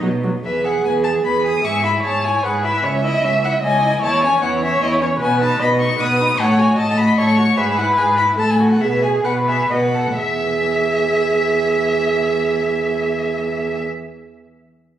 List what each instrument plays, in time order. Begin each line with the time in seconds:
0.03 cello B2, viola F#3
0.24 viola F#3
0.44 cello E2, viola G#4, violin B4 E5
0.64 violin G#4 F#5
0.84 cello E2, violin B4 G#5
1.04 violin G#4 A5
1.24 cello E2, violin B4 B5
1.44 violin G#4 D#6
1.65 cello G#2, violin G#4 C#6, viola E5
1.84 violin E4 B5
2.04 cello G#2, violin G#4 A5, viola C#5
2.24 violin E4 G#5
2.44 cello G#2, violin G#4 F#5, viola B4
2.64 violin E4 E5
2.84 cello C#2, violin C#4 C#5, viola E5
3.04 violin E4 D#5
3.24 cello C#2, violin C#4 E5
3.43 violin E4 F#5
3.63 cello C#2, violin C#4 G#5, viola D#5
3.82 violin E4
4.02 cello E2, violin E4 A5, viola C#5
4.23 violin C#4 G#5
4.41 cello E2, violin E4 F#5, viola C#5
4.62 violin C#4 E5
4.81 cello E2, violin E4 D#5
5.01 violin C#4 C#5
5.20 cello B2, violin B3 G#5, viola B4
5.41 violin D#4 A5
5.60 cello B2, violin B3 B5, viola D#5
5.80 violin D#4 C#6
6.00 cello B2, violin B3 D#6, viola B4
6.21 violin D#4
6.39 cello A2, violin A4 F#5, viola C#5
6.59 violin F#4 G#5
6.78 cello A2, violin A4 A5, viola D#5
6.97 violin F#4 B5
7.18 cello A2, violin A4 C#6, viola C#5
7.38 violin F#4
7.57 cello G#2, violin G#4 E5, viola B4
7.78 violin E4 F#5
7.97 cello G#2, violin G#4 G#5
8.17 violin E4 B5
8.38 cello A2, viola A4, violin A4 A5
8.50 violin G#5
8.60 violin F#4
8.71 violin F#5
8.81 cello B2, viola G#4, violin B4 E5
9.02 violin G#4 G#5
9.24 cello B2, viola B4, violin B4 F#5
9.47 violin G#4 E5
9.70 cello B2, violin B4 F#5, viola D#5
9.95 violin A4
10.18 cello E2, viola G#4, violin E5